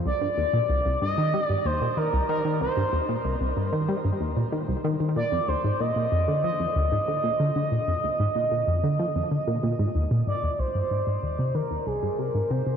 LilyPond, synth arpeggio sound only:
\new Staff \with { instrumentName = "Synth arpeggio sound" } { \clef bass \time 4/4 \key c \minor \tempo 4 = 94 c,16 g,16 ees,16 bes,16 c,16 c,16 g,16 ees16 g16 g,16 ees,16 bes,16 ees16 c,16 ees16 ees16 | c,16 g,16 ees,16 bes,16 c,16 c,16 g,16 ees16 g16 g,16 ees,16 bes,16 ees16 c,16 ees16 ees16 | bes,16 f,16 d,16 aes,16 bes,16 bes,16 f,16 d16 f16 f,16 d,16 aes,16 d16 bes,16 d16 d16 | bes,16 f,16 d,16 aes,16 bes,16 bes,16 f,16 d16 f16 f,16 d16 bes,16 bes,16 aes,16 ees,16 bes,16 |
aes,16 ees,16 c,16 g,16 aes,16 aes,16 ees,16 c16 ees16 ees,16 c,16 g,16 c16 aes,16 c16 c16 | }